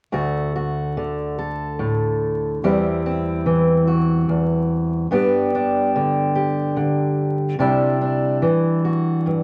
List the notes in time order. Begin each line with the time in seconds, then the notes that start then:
0.12 D2 A3 F#4
0.56 F#4
0.97 D3
1.38 A4
1.79 A2
2.64 E2 G3 C4 E4
3.06 C4
3.46 E3
3.87 F#4
4.29 E2
5.11 G2 B3 D4 G4
5.55 D4
5.96 D3
6.35 G4
6.76 D3
7.59 C3 G3 D4 E4
8.01 D4
8.42 E3
8.85 F#4
9.26 G2